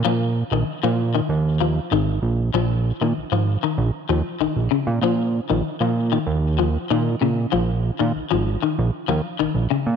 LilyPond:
<<
  \new Staff \with { instrumentName = "Clean electric guitar" } { \clef bass \time 4/4 \key bes \minor \tempo 4 = 96 f8 r16 ees8 f8 ees8 r16 f8 ees8 r8 | f8 r16 ees8 f8 ees8 r16 f8 ees8 des8 | f8 r16 ees8 f8 ees8 r16 f8 ees8 des8 | f8 r16 ees8 f8 ees8 r16 f8 ees8 des8 | }
  \new Staff \with { instrumentName = "Analog synth bass" } { \clef bass \time 4/4 \key bes \minor bes,8. bes,,16 r16 bes,8. ees,4 aes,,8 bes,,8 | bes,,8. bes,16 bes,,16 aes,,8 r16 bes,,16 r16 ees,16 r16 bes,,16 bes,,16 r16 bes,16 | bes,8. bes,,16 r16 bes,8. ees,4 bes,8 bes,8 | bes,,8. bes,16 bes,,16 aes,,8 r16 bes,,16 r16 ees,16 r16 bes,,16 bes,,16 r16 bes,16 | }
>>